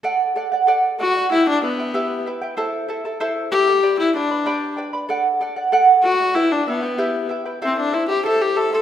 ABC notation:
X:1
M:2/4
L:1/16
Q:1/4=95
K:Dmix
V:1 name="Charango"
[Adf]2 [Adf] [df] [Adf]2 [Adf] [df] | [EGBeg]2 [EBeg] [EBg] [EGBeg]2 [EBeg] [EBg] | [EAcea]2 [EAea] [EAa] [EAcea]2 [EAea] [EAa] | [GBdgb]2 [Bdgb] [Bdb] [GBdgb]2 [Bdgb] [Bdb] |
[Adf]2 [Adf] [df] [Adf]2 [Adf] [df] | [EGBeg]2 [EBeg] [EBg] [EGBeg]2 [EBeg] [EBg] | [EAcea]2 [Ecea] [Eca] [EAcea]2 [Ecea] [Eca] |]
V:2 name="Viola"
z6 F2 | E D B,4 z2 | z6 G2- | G E D4 z2 |
z6 F2 | E D B,4 z2 | C D E G A G A A |]